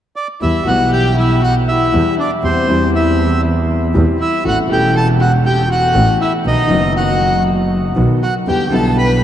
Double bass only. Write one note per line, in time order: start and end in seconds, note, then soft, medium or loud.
0.42 0.63 E2 soft
0.66 1.86 B1 medium
1.93 2.14 E2 medium
2.43 2.64 E2 soft
2.69 3.88 E2 medium
3.94 4.15 E2 medium
4.45 4.66 A1 soft
4.69 5.88 E1 medium
5.95 6.16 A1 medium
6.45 6.66 B1 soft
6.70 7.90 F#1 medium
7.96 8.18 B1 medium
8.47 8.68 E2 soft
8.73 9.24 B1 medium